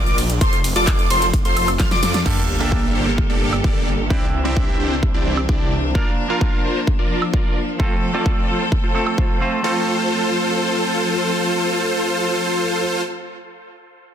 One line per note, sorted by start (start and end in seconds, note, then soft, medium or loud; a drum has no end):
0.00 0.39 A#1 loud
0.00 0.20 F4 medium
0.00 0.20 A#4 medium
0.00 0.20 D5 medium
0.00 0.20 D6 medium
0.07 closed hi-hat soft
0.07 shaker soft
0.18 open hi-hat medium
0.18 ride medium
0.18 shaker medium
0.30 closed hi-hat medium
0.30 shaker soft
0.41 0.73 F1 loud
0.41 0.57 F4 medium
0.41 0.57 A4 medium
0.41 0.57 C5 loud
0.41 0.57 C6 loud
0.41 kick loud
0.41 closed hi-hat medium
0.41 shaker soft
0.53 closed hi-hat soft
0.53 shaker soft
0.64 open hi-hat loud
0.64 ride medium
0.64 shaker medium
0.76 1.08 F1 loud
0.76 1.08 F4 loud
0.76 1.08 A4 medium
0.76 1.08 D5 loud
0.76 1.08 D6 loud
0.76 closed hi-hat medium
0.76 shaker soft
0.87 kick loud
0.87 clap loud
0.87 closed hi-hat medium
0.87 shaker soft
0.99 closed hi-hat soft
0.99 shaker soft
1.10 1.43 F1 loud
1.10 1.26 F4 medium
1.10 1.26 A4 medium
1.10 1.26 C5 medium
1.10 1.26 C6 medium
1.10 open hi-hat medium
1.10 ride medium
1.10 shaker medium
1.22 closed hi-hat medium
1.22 shaker soft
1.33 kick loud
1.33 closed hi-hat medium
1.33 shaker soft
1.45 1.77 F1 loud
1.45 1.70 F4 medium
1.45 1.70 A4 medium
1.45 1.70 C5 medium
1.45 1.70 C6 medium
1.45 closed hi-hat soft
1.45 shaker soft
1.57 open hi-hat loud
1.57 ride medium
1.57 high woodblock medium
1.57 shaker medium
1.68 closed hi-hat medium
1.68 high woodblock medium
1.68 shaker soft
1.79 1.89 F1 loud
1.79 1.88 F4 medium
1.79 1.88 A4 medium
1.79 1.88 F5 medium
1.79 1.88 F6 medium
1.79 kick loud
1.79 snare medium
1.79 clap loud
1.79 closed hi-hat medium
1.79 shaker soft
1.91 2.00 F1 loud
1.91 2.01 F4 medium
1.91 2.01 A4 medium
1.91 2.01 D5 loud
1.91 2.01 D6 loud
1.91 snare medium
1.91 closed hi-hat soft
1.91 shaker soft
2.03 2.23 F2 loud
2.03 2.18 F4 medium
2.03 2.18 A4 medium
2.03 2.18 D5 medium
2.03 2.18 D6 loud
2.03 snare medium
2.03 open hi-hat medium
2.03 ride medium
2.03 shaker medium
2.14 snare medium
2.14 closed hi-hat medium
2.14 shaker soft
2.25 2.58 G1 medium
2.25 2.57 A#3 medium
2.25 4.09 A#3 medium
2.25 2.41 A#3 medium
2.25 2.58 D4 medium
2.25 2.41 D4 medium
2.25 2.41 G4 medium
2.25 4.09 G4 medium
2.25 2.58 G4 medium
2.25 2.41 A4 medium
2.25 4.09 A4 medium
2.25 2.58 A4 medium
2.25 2.41 D5 medium
2.25 kick loud
2.25 crash medium
2.25 sub drop medium
2.59 2.93 G1 medium
2.59 4.07 A#3 medium
2.59 2.92 A#3 medium
2.59 4.08 D4 medium
2.59 2.92 D4 medium
2.59 2.92 G4 medium
2.59 4.08 G4 medium
2.59 2.92 A4 medium
2.59 4.08 A4 medium
2.59 2.92 E5 loud
2.72 kick loud
2.95 3.27 G1 medium
2.95 3.11 A#3 medium
2.95 3.11 D4 medium
2.95 3.11 G4 medium
2.95 3.11 A4 medium
2.95 3.11 C5 medium
3.18 kick loud
3.30 3.62 G1 medium
3.30 3.54 A#3 medium
3.30 3.55 D4 medium
3.30 3.54 G4 medium
3.30 3.54 A4 medium
3.30 3.54 D5 medium
3.53 high woodblock medium
3.64 4.08 G1 medium
3.64 3.89 A#3 medium
3.64 3.89 D4 medium
3.64 3.89 G4 medium
3.64 3.89 A4 medium
3.64 3.89 D5 medium
3.64 kick loud
4.10 4.43 C2 medium
4.10 5.93 E3 medium
4.10 4.42 C4 medium
4.10 5.93 C4 medium
4.10 4.26 C4 medium
4.10 4.42 D4 medium
4.10 4.26 D4 medium
4.10 7.76 D4 medium
4.10 4.26 E4 medium
4.10 4.42 E4 medium
4.10 4.26 G4 medium
4.10 4.43 G4 medium
4.10 4.26 D5 loud
4.10 kick loud
4.44 4.77 C2 medium
4.44 5.92 C4 medium
4.44 4.77 C4 medium
4.44 5.92 D4 medium
4.44 4.77 D4 medium
4.44 4.77 E4 medium
4.44 5.92 E4 medium
4.44 4.77 G4 medium
4.44 5.93 G4 medium
4.44 4.77 E5 loud
4.57 kick loud
4.80 5.12 C2 medium
4.80 4.95 C4 medium
4.80 4.95 D4 medium
4.80 4.95 E4 medium
4.80 4.95 G4 medium
4.80 4.95 C5 medium
5.03 kick loud
5.14 5.47 C2 medium
5.14 5.39 C4 medium
5.14 5.39 D4 medium
5.14 5.39 E4 medium
5.14 5.39 G4 medium
5.14 5.39 D5 medium
5.37 high woodblock medium
5.49 5.93 C2 medium
5.49 5.74 C4 medium
5.49 5.74 D4 medium
5.49 5.74 E4 medium
5.49 5.74 G4 medium
5.49 5.74 D5 medium
5.49 kick loud
5.94 9.61 F3 medium
5.94 6.27 A#3 medium
5.94 7.78 A#3 medium
5.94 6.27 D4 medium
5.94 6.11 F4 medium
5.94 6.27 F4 soft
5.94 6.11 A#4 medium
5.94 6.27 A#4 medium
5.94 6.11 D5 loud
5.94 kick loud
6.28 7.76 A#3 medium
6.28 7.77 D4 medium
6.28 6.62 F4 medium
6.28 7.77 F4 medium
6.28 6.62 A#4 medium
6.28 7.77 A#4 medium
6.28 6.62 F5 loud
6.41 kick loud
6.64 6.80 F4 medium
6.64 6.80 A#4 medium
6.64 6.80 C5 medium
6.87 kick loud
6.99 7.24 F4 medium
6.99 7.24 A#4 medium
6.99 7.24 D5 medium
7.22 high woodblock medium
7.33 7.58 F4 medium
7.33 7.58 A#4 medium
7.33 7.58 D5 medium
7.33 kick loud
7.79 8.11 A3 medium
7.79 8.11 C4 medium
7.79 9.62 C4 medium
7.79 7.95 F4 medium
7.79 8.12 F4 medium
7.79 9.62 A4 medium
7.79 7.95 A4 medium
7.79 8.12 A4 medium
7.79 7.95 C5 medium
7.79 kick loud
8.13 8.92 A3 medium
8.13 8.93 C4 medium
8.13 8.46 F4 medium
8.13 8.93 F4 medium
8.13 8.46 A4 medium
8.13 8.93 A4 medium
8.13 8.46 D5 medium
8.26 kick loud
8.49 8.64 F4 medium
8.49 8.64 A4 medium
8.49 8.64 C5 medium
8.72 kick loud
8.84 9.08 F4 medium
8.84 9.08 A4 medium
8.84 9.08 C5 medium
8.94 9.38 A3 medium
8.94 9.38 C4 medium
8.94 9.38 F4 medium
8.94 9.39 A4 medium
8.94 high woodblock medium
9.07 high woodblock medium
9.18 9.43 F4 medium
9.18 9.43 A4 medium
9.18 9.43 C5 medium
9.18 kick loud
9.40 9.61 A3 medium
9.40 9.61 C4 medium
9.40 9.62 F4 medium
9.40 9.62 C5 medium
9.62 13.02 F3 medium
9.62 13.00 A3 medium
9.62 13.01 C4 medium
9.62 13.02 C4 medium
9.62 13.02 F4 medium
9.62 13.03 F4 medium
9.62 13.02 A4 medium
9.62 13.04 A4 medium
9.62 13.02 C5 medium